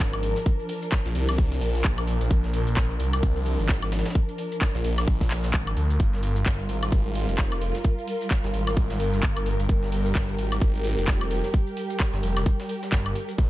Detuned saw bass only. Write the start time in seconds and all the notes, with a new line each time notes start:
Already playing: G#1
1.06 A#1
1.15 C2
1.52 C2
1.61 A#1
1.98 A#1
2.21 A#1
2.31 A#1
2.77 A#1
3.00 C2
3.36 C2
3.60 G#1
4.75 A#1
4.84 A#1
5.31 A#1
5.54 G#1
5.77 D2
6.00 G1
6.46 G1
6.69 G#1
7.06 G#1
7.29 F1
8.44 G1
8.54 G#1
8.90 G#1
9.00 G1
9.36 G1
9.60 G1
9.69 G1
10.15 G1
10.38 G#1
10.75 G#1
10.98 F1
12.14 G1
12.23 F1
12.92 G1
13.38 A#1